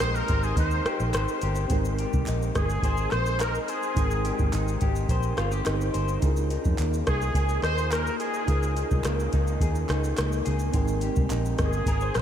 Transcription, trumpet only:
0.00 0.16 C5 loud
0.15 0.45 A#4 medium
0.43 0.57 G#4 medium
0.58 1.10 C5 medium
2.56 3.12 G#4 medium
3.11 3.42 C5 loud
3.41 3.60 A#4 medium
3.61 3.70 A#4 medium
3.69 4.53 G#4 medium
7.07 7.60 G#4 medium
7.63 7.92 C5 loud
7.90 8.18 A#4 medium
8.18 9.00 G#4 medium
11.62 12.18 G#4 medium
12.17 12.22 C5 loud

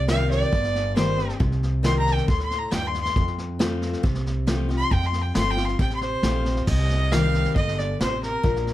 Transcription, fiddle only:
0.09 0.29 F5 loud
0.30 0.94 D5 loud
0.97 1.39 C5 loud
1.85 1.98 C6 loud
1.99 2.15 A#5 loud
2.14 2.28 G5 medium
2.29 2.42 C6 medium
2.43 2.60 C6 medium
2.58 2.72 A#5 medium
2.72 2.89 G5 loud
2.87 3.00 C6 medium
3.01 3.23 C6 loud
4.77 4.94 C6 loud
4.93 5.08 G5 loud
5.06 5.23 C6 medium
5.22 5.35 G5 medium
5.36 5.52 C6 loud
5.51 5.66 G5 loud
5.65 5.79 C6 medium
5.80 5.94 G5 medium
5.95 6.02 C6 medium
6.02 6.64 C5 medium
6.68 7.14 D#5 loud
7.12 7.55 F5 loud
7.56 7.80 D#5 loud
7.78 8.00 D5 medium
8.02 8.21 C5 medium
8.23 8.63 A#4 medium

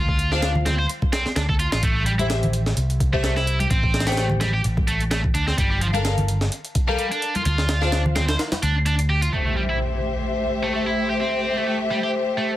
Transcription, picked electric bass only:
0.00 0.85 D2 medium
1.26 muted picked electric bass stroke soft
1.36 1.67 D2 medium
1.73 1.80 A1 medium
1.83 2.72 A1 medium
2.77 3.66 C2 medium
3.71 4.60 A1 medium
4.65 5.30 A1 medium
5.35 5.53 D2 medium
5.58 6.47 G1 loud
7.46 8.35 D2 medium
8.63 9.29 D2 medium

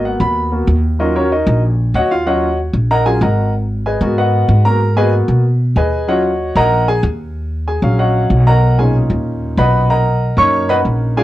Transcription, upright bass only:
0.00 0.14 G#1 medium
0.20 0.64 D#2 medium
0.67 1.41 D#2 loud
1.47 1.91 A#1 loud
1.94 2.68 D#2 medium
2.73 3.18 A#1 loud
3.21 3.95 G#1 loud
4.01 4.46 G#2 loud
4.48 5.23 G#2 medium
5.28 5.73 B2 loud
5.76 6.50 D#2 medium
6.55 7.00 A#1 medium
7.03 7.77 D#2 loud
7.82 8.27 A#1 medium
8.30 9.04 B1 loud
9.10 9.54 D#2 medium
9.57 10.32 B1 loud
10.37 10.81 F#2 medium
10.85 11.23 A#1 medium

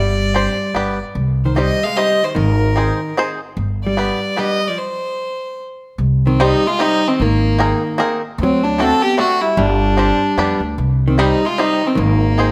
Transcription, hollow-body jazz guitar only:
0.00 0.98 G3 medium
1.45 1.57 D#3 medium
1.58 1.85 G3 medium
1.85 1.96 G#3 medium
1.96 2.23 G3 medium
2.23 2.34 D#3 medium
2.35 3.12 D#3 medium
3.87 4.35 G3 medium
4.39 4.69 G3 medium
4.69 4.78 F3 medium
6.27 6.40 D#3 medium
6.40 6.67 G3 medium
6.67 6.81 G#3 medium
6.81 7.08 G3 medium
7.08 7.21 D#3 medium
7.22 8.00 D#3 medium
8.43 8.61 F#3 loud
8.64 8.80 F#3 medium
8.82 9.03 C4 loud
9.03 9.19 B3 medium
9.19 9.41 A3 medium
9.41 9.56 G3 medium
9.58 10.61 G3 medium
11.08 11.19 D#3 medium
11.19 11.45 G3 medium
11.45 11.59 G#3 medium
11.59 11.84 G3 medium
11.84 11.94 D#3 medium
11.95 12.52 D#3 medium

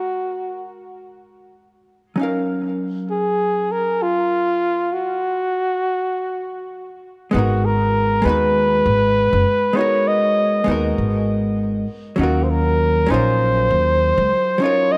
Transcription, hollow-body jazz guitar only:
0.00 2.14 G#3 medium
0.00 2.15 B3 medium
0.00 2.16 D#4 medium
0.00 2.17 F#4 medium
0.00 2.18 A#4 medium
2.16 6.99 F#3 medium
2.16 7.00 C#4 medium
2.16 7.01 D#4 medium
2.21 7.03 A#4 medium
2.21 7.02 F5 medium
7.31 8.20 G#3 medium
7.31 8.21 B3 medium
7.31 8.22 D#4 medium
7.36 8.23 F#4 medium
7.36 8.24 A#4 medium
8.22 9.72 G#3 medium
8.22 9.73 B3 medium
8.22 9.74 D#4 medium
8.27 9.75 F#4 medium
8.27 9.75 B4 loud
9.73 10.63 G#3 medium
9.73 10.64 B3 medium
9.73 10.65 D#4 medium
9.79 10.65 F#4 medium
9.79 10.66 A#4 medium
10.64 11.86 G#3 medium
10.64 11.86 B3 medium
10.64 11.87 D#4 medium
10.70 11.88 F#4 medium
10.70 11.89 A#4 loud
12.16 13.05 F#3 medium
12.16 13.06 C#4 medium
12.16 13.07 D#4 medium
12.21 13.08 F4 medium
12.21 13.09 A#4 medium
13.06 14.57 F#3 loud
13.06 14.58 C#4 medium
13.06 14.58 D#4 medium
13.12 14.59 F4 medium
13.12 14.60 A#4 loud
14.58 14.98 F#3 medium
14.58 14.98 C#4 medium
14.58 14.98 D#4 medium
14.64 14.98 F4 medium
14.64 14.98 A#4 medium

